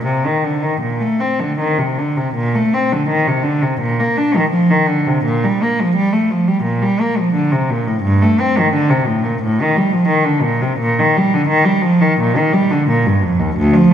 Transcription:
cello
0.05 C3
0.25 D#3
0.44 D3
0.62 D#3
0.80 A#2
1.00 A3
1.20 C4
1.40 D3
1.59 D#3
1.78 C3
1.98 D3
2.16 C3
2.35 A#2
2.55 A3
2.73 C4
2.92 D3
3.08 D#3
3.27 C3
3.43 D3
3.62 C3
3.80 A#2
4.00 A#3
4.17 D4
4.36 D#3
4.50 F3
4.70 D#3
4.87 D3
5.07 C3
5.25 A#2
5.44 G3
5.63 A#3
5.81 F3
5.96 G3
6.13 A3
6.30 F3
6.48 G3
6.63 A#2
6.82 G3
7.00 A#3
7.18 F3
7.34 D3
7.52 C3
7.70 A#2
7.86 A2
8.03 G2
8.22 A3
8.41 C4
8.58 D#3
8.73 D3
8.90 C3
9.07 A2
9.24 A#2
9.42 A2
9.61 D#3
9.77 G3
9.92 F3
10.08 D#3
10.24 D3
10.42 A#2
10.62 C3
10.79 A#2
10.99 D#3
11.17 G3
11.34 D3
11.48 D#3
11.65 G3
11.82 F3
12.01 D#3
12.20 A#2
12.37 D#3
12.53 G3
12.71 D3
12.89 A#2
13.06 G2
13.23 F2
13.39 D#2
13.57 D2
13.73 F3

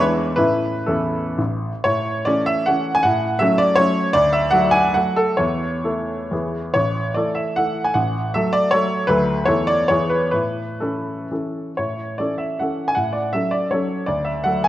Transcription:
grand piano
Already playing: E2 E3 G#3 D4
0.01 B4
0.36 A2 A3 C#4 E4 B4
0.86 E2 C#4 E4 A4
1.38 A1
1.84 A2 C#5
2.25 E3 A3 C#4 D5
2.46 E5
2.66 E3 A3 C#4 F#5
2.95 G#5
3.03 A2 F#5
3.39 F#3 A3 C#4 E5
3.58 D5
3.76 F#3 A3 C#4 C#5
4.13 D2 D5
4.32 E5
4.50 F#3 A3 F#4 F#5
4.71 G#5
4.94 F#3 A3 F#4 F#5
5.16 A4
5.37 E2 C#5
5.84 E3 A3 A4
6.31 E2 E3 B3 G#4
6.73 A1 C#5
7.14 E3 A3 A4 D5
7.35 E5
7.56 E3 A3 A4 F#5
7.84 G#5
7.94 A1 F#5
8.34 F#3 A3 A4 E5
8.53 D5
8.71 F#3 A3 A4 C#5
9.07 D2 F#3 A3 A4 B4
9.45 E2 E3 A3 A4 C#5
9.67 D5
9.88 E2 E3 B3 G#4 C#5
10.09 B4
10.31 A2 B4
10.81 E3 C#4 A4
11.32 E3 C#4 A4
11.77 A2 C#5
12.18 E3 C#4 A4 D5
12.38 E5
12.59 E3 C#4 A4 F#5
12.88 G#5
12.95 A2 F#5
13.13 D5
13.33 F#3 C#4 A4 E5
13.51 D5
13.71 F#3 C#4 A4 C#5
14.06 D2 D5
14.25 E5
14.44 F#3 A3 A4 F#5
14.64 G#5

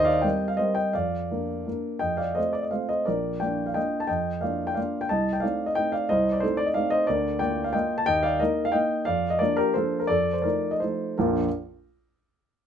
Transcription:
grand piano
Already playing: D#2
0.04 D5 F5
0.21 G3 C4 A#4 D#5 G5
0.48 F5
0.57 G3 C4 A#4 C5 D#5
0.75 D#5 G5
0.93 F2 D5 F5
1.31 A#3 D4 A#4
1.67 A#3 D4 A#4
1.99 F2 D#5 G5
2.17 D5 F5
2.35 A3 C4 F4 C5 D#5
2.53 D5
2.62 D#5
2.71 A3 C4 F4 C5 F5
2.89 C5 D#5
3.06 A#1 A#4 D5
3.40 A#3 D4 F4 D5 G5
3.66 F5
3.74 A#3 D4 F4 D#5 G5
4.00 A5
4.07 F2 D#5 G5
4.41 A#3 D4 F4 D5 F5
4.67 G5
4.75 A#3 D4 F4 D5 F5
5.01 G5
5.09 C2 D#5 A5
5.33 G5
5.40 A3 C4 D#4 D5 F5
5.66 D#5
5.75 A3 C4 D#4 D#5 G5
5.92 D5 F5
6.09 C2 C5 D#5
6.32 D5
6.40 A3 C4 D#4 A4 C5
6.57 D5
6.66 D#5
6.74 A3 C4 D#4 D5 F5
6.90 C5 D#5
7.07 D2 A#4 D5
7.39 A#3 F4 D5 G5
7.64 F5
7.73 A#3 F4 D#5 G5
7.98 A5
8.06 D#2 D#5 G5
8.23 D5 F5
8.40 A#3 D#4 A#4 D#5
8.65 F5
8.72 A#3 D#4 D#5 G5
9.05 F2 D5 F5
9.30 D#5
9.39 F3 A#3 D4 A#4 D5
9.57 G4 A#4
9.74 F3 A#3 D4 A4 C5
10.00 A#4
10.07 F2 A4 D5
10.33 C5
10.42 F3 A3 D#4 A#4 D5
10.71 D#5
10.80 F3 A3 D#4 A4 C5
11.18 A#1 F2 F3 A#3 D4 F4 A#4

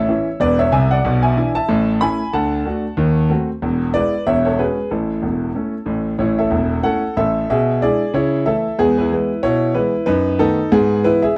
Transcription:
grand piano
Already playing: A1 A2 C#5 E5
0.09 E3 C#4 E4
0.40 E1 E2 B4 D5
0.59 C#5 E5
0.72 C2 C3 E5 G#5
0.91 D5 F#5
1.04 B1 B2
1.23 E5 G#5
1.37 E3 D4 E4
1.55 E5 A5
1.68 A1 A2
2.01 A3 C#4 E4 G#5 B5
2.33 D2 D3 F#5 A5
2.65 A3 D4 F#4
2.97 D#2 D#3
3.30 A3 C4 F#4
3.62 E1 E2
3.94 G#3 B3 E4 B4 D5
4.27 E1 E2 C#5 E5
4.45 A4 C#5
4.58 G#3 C#4 F#4 G#4 B4
4.91 A1 A2 E4 A4
5.22 E1 E2
5.55 A3 C#4 E4
5.86 A1 A2
6.18 A1 A2 E4 C#5
6.38 A4 E5
6.50 E1 E2
6.83 A3 C#4 E4 A4 F#5
7.17 A1 A2 A4 E5
7.50 B2 G#4 E5
7.82 G#3 D4 E4 G#4 D5
8.14 C#3 E4 C#5
8.46 E3 A3 E4 A4 E5
8.79 E2 G#3 B3 G#4
8.98 E4 B4
9.12 E3 G#3 B3
9.43 B2 E4 C#5
9.74 E3 G#3 B3 E4 B4
10.06 F#2 D#4 B4
10.39 D#3 A3 B3 D#4 A4
10.72 G#2 B3 G#4
11.04 E3 G#3 B3 E4 B4
11.22 G#4 E5

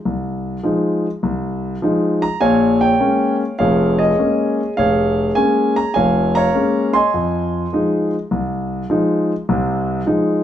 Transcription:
grand piano
0.05 C2
0.64 F3 G#3 D#4
1.23 C2
1.82 F3 G#3 D#4
2.22 A#5
2.41 A#1 A#2 C#5 F5 G#5
2.81 C#5 G5
2.99 G#3 A#3 C#4
3.59 F1 F2 G#4 C#5 F5
3.99 G#4 D#5
4.18 G#3 A#3 C#4
4.77 F1 G#4 C#5 F5
5.35 G#3 A#3 C#4 G#5
5.76 A#5
5.94 F1 F2 C#5 F5 G#5
6.35 C#5 F5 A#5
6.55 G#3 A#3 C#4
6.93 D#5 G#5 C6
7.14 F2
7.73 F3 G#3 D#4
8.31 C2
8.90 F3 G#3 D#4
9.49 C2 C3
10.06 F3 G#3 D#4

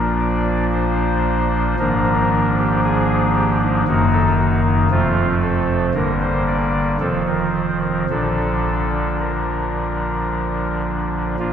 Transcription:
pipe organ
Already playing: A#1 A#2 F3 A#3 D4 A#4
0.19 D5
0.72 C5
1.79 G#1 G#2 F3 A#3 D4 A#4
2.58 G4
2.84 G#4
3.35 G4
3.61 D#4
3.87 F#1 F#2 D#3 A#3 D#4 F#4
4.13 A4
4.38 F#4
4.64 D#4
4.90 F1 F2 F3 A3 C4 F4
5.42 A4
5.94 G1 G2 D3 A#3 A#4
6.21 C5
6.47 D5
7.00 F1 F2 D#3 F3 C4 A4
7.27 A#4
7.54 C5
7.81 A#4
8.10 A#1 A#2 D3 F3 D4 A4
9.20 A#4
11.39 A#1 A#2 F3 A#3 D4 F4

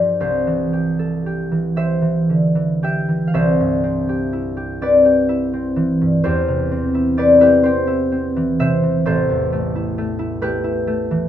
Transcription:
harp
Already playing: G2 F3 G4 D5
0.20 C2 C5
0.47 E3
0.73 G4
0.99 A4
1.26 G4
1.51 E3
1.76 G4 C5 E5
2.02 E3
2.30 D3
2.55 E3
2.83 G4 E5 G5
3.08 E3
3.27 F5
3.34 C2 C5 E5
3.60 G2
3.84 C4
4.09 G4
4.33 E4
4.57 G4
4.81 C4 B4 D5
5.05 G4
5.29 E4
5.53 C4
5.76 E3
6.01 G2
6.24 E2 G4 C5
6.48 C3
6.72 C4
6.94 E4
7.17 C4 B4 D5
7.40 E4 G4 B4
7.63 C4 G4 C5
7.87 E4
8.12 C4
8.36 E3
8.59 C3 C5 E5
8.83 E3
9.05 A1 A4 C5
9.29 E2
9.52 A3
9.75 E4
9.98 A3
10.19 E4
10.42 A3 G4 B4
10.64 E4
10.87 A3
11.11 E3

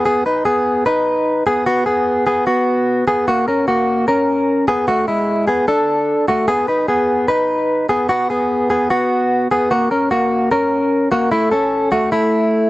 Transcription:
clean electric guitar
0.05 B3 G#4
0.26 D#4 B4
0.45 B3 G#4
0.86 D#4 B4
1.47 B3 G#4
1.66 B3 F#4
1.86 B3 G#4
2.27 B3 G#4
2.47 B3 F#4
3.08 B3 G#4
3.28 A#3 F#4
3.48 C#4 A#4
3.68 A#3 F#4
4.08 C#4 A#4
4.68 B3 G#4
4.88 A3 F#4
5.08 G#3 E4
5.47 B3 G#4
5.68 D4 A4
6.28 A3 F#4
6.48 B3 G#4
6.68 D#4 B4
6.88 B3 G#4
7.28 D#4 B4
7.89 B3 G#4
8.09 B3 F#4
8.30 B3 G#4
8.70 B3 G#4
8.90 B3 F#4
9.51 B3 G#4
9.71 A#3 F#4
9.91 C#4 A#4
10.11 A#3 F#4
10.51 C#4 A#4
11.11 A#3 F#4
11.31 A3 E4
11.51 C#4 A4
11.92 A3 F#4
12.12 A3 E4

